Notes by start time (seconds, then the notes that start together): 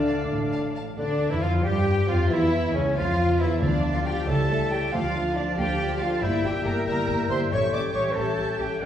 Already playing: D2 D3 A3 D4 D5 F5 A5
0.07 F5 A5
0.29 A1 A2
0.52 F5 A5
0.76 F5 A5
0.96 D2 D3 D4 D5
1.30 E2 E3 E4 E5
1.41 F2 F3 F4 F5
1.63 G2 G3 G4 G5
2.08 F2 F3 F4 F5
2.29 E2 E3 E4 E5
2.73 C#2 C#3 C#4 C#5
2.95 F2 F3 F4 F5
3.39 E2 E3 E4 E5
3.61 D2 D3 F3 D4 F4 D5 F5 A5
3.84 A3 D4 D5
3.94 F4 F5
4.05 F3 F4 G4 F5 G5
4.27 C#2 G3 E4 G4 A4 C#5 E5 A5
4.50 A3 A4 E5
4.70 G3 G4 C#5 G5
4.92 D2 D3 F3 F4 D5 F5 A5
5.15 A3 D4 F5
5.36 F3 D4 F4 D5
5.57 D2 A3 D4 G4 F5 G5
5.80 F3 F4 D5
6.00 A3 D4 F4 F5
6.21 G1 G3 A#3 E4 G4 E5 G5
6.44 G1 A#3 G4 E5 G5
6.65 G1 A#3 G4 A#4 E5 A#5
6.85 G1 G3 A#3 G4 A#4 E5 G5 A#5
7.08 G1 A#3 G4 E5
7.30 G1 A#3 G4 C5 E5 C6
7.51 A1 A3 C#4 G4 C#5 E5 G5 C#6
7.73 A1 C#4 G4 D5 E5 D6
7.95 A1 C#4 G4 C#5 E5 C#6
8.16 A1 A3 C#4 G4 A4 C#5 E5 G5 A5
8.38 A1 C#4 G4 E5
8.59 A1 C#4 G4 E5 G5
8.81 A#1 F3 A#3 D4 F4 D5 F5